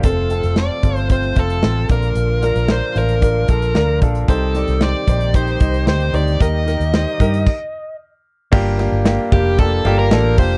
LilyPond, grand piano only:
<<
  \new Staff \with { instrumentName = "Grand piano" } { \time 4/4 \key g \minor \tempo 4 = 113 <c' f' a'>8 <c' f' a'>8 <c' f' a'>8 <c' f' a'>8 <c' f' c''>8 <c' f' c''>8 <c' f' a'>8 <d' f' bes'>8~ | <d' f' bes'>8 <d' f' bes'>8 <d' f' bes'>8 <d' f' c''>8 <d' f' bes'>8 <d' f' a'>8 <d' f' bes'>8 <d' f' a'>8 | <ees' g' c''>8 <ees' g' d''>8 <ees' g' c''>8 <ees' g' c''>8 <ees' g' c''>8 <ees' g' ees''>8 <ees' g' c''>8 <ees' g' c''>8 | <ees' g' bes'>8 <ees' g' bes'>8 <ees' g' c''>8 <ees' g' bes'>8 r2 |
<bes d' f' g'>8 <bes d' f' g'>8 <bes d' f' g'>8 <bes d' f' g'>8 <bes d' f' g'>8 <bes d' f' g'>8 <bes d' f' a'>8 <bes d' f' g'>8 | }
  \new Staff \with { instrumentName = "Grand piano" } { \clef bass \time 4/4 \key g \minor r2. r8 bes,8~ | bes,4 r2. | c4. r2 r8 | ees4. r2 r8 |
g,4. r2 r8 | }
>>